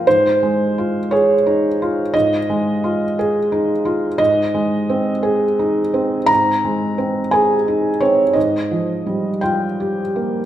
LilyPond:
\new Staff \with { instrumentName = "Felt piano" } { \time 6/8 \key aes \major \tempo 4. = 58 << { c''4. des''4. | ees''4. r4. | ees''2. | bes''4. aes''4 des''8 |
ees''4. g''4. | } \\ { aes,8 aes8 f'8 aes'8 ees'8 f'8 | aes,8 aes8 f'8 aes'8 ees'8 f'8 | aes,8 aes8 c'8 aes'8 ees'8 c'8 | aes,8 aes8 c'8 aes'8 ees'8 c'8 |
aes,8 f8 g8 f'8 g'8 bes8 | } >> }